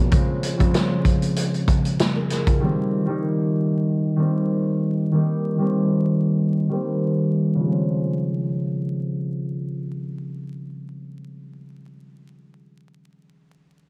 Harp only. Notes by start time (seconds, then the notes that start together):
Already playing: F3 G#3 A#3
0.10 C#3 F3 G#3 C4
0.57 C#3 F3 G#3 C4
2.16 A#4
2.31 G#4
2.49 F4
2.60 D#3 G3 A#3 C4
3.06 D#3 G3 A#3 D#4
4.16 D#3 G3 A#3 C4
5.12 D#3 G3 A#3 D#4
5.58 D#3 G3 A#3 C4
6.69 D#3 G3 A#3 C4
7.55 C#3
7.59 F3
7.64 G#3
7.69 C4